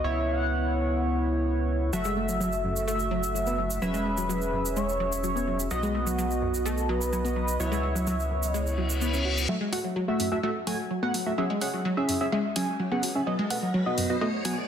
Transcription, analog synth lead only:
0.04 0.27 E5 loud
0.28 1.18 F#5 loud
1.93 2.84 E5 loud
2.88 3.78 E5 loud
3.82 4.78 B4 loud
4.76 5.23 C#5 loud
5.24 5.57 C#5 loud
5.71 6.67 F#4 loud
6.65 6.90 A4 medium
6.89 7.36 B4 loud
7.36 7.58 B4 medium
7.60 8.50 E5 loud
8.50 8.98 D#5 loud

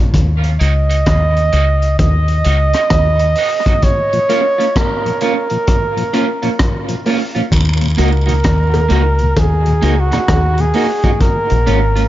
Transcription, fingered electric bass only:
0.00 0.10 A#1 medium
0.14 0.57 D#2 loud
0.61 1.03 C#2 medium
1.07 1.50 D#2 medium
1.53 1.96 C#2 medium
1.99 2.42 D#2 loud
2.46 2.73 C#2 medium
2.91 3.34 D#2 loud
7.52 7.95 D#2 loud
7.99 8.41 C#2 medium
8.45 8.87 D#2 medium
8.91 9.33 C#2 medium
9.37 9.80 D#2 loud
9.83 10.10 C#2 medium
10.29 10.72 D#2 loud
11.52 11.66 A#1 medium
11.68 12.08 G#1 medium

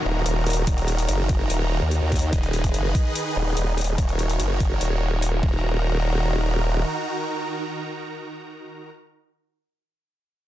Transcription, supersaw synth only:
0.00 5.39 D#3 medium
0.00 2.29 D#4 medium
0.00 2.29 F#4 medium
0.00 2.29 A#4 medium
0.00 2.29 A#5 medium
2.33 5.40 D#4 medium
2.33 3.97 G#4 medium
2.33 3.97 B4 medium
2.33 3.97 D#5 medium
3.98 5.42 F#4 medium
3.98 5.42 A#4 medium
3.98 5.42 C#5 medium
5.43 8.90 D#3 medium
5.43 8.90 D#4 medium
5.43 8.90 F#4 medium
5.43 8.90 A#4 medium
5.43 8.90 A#5 medium

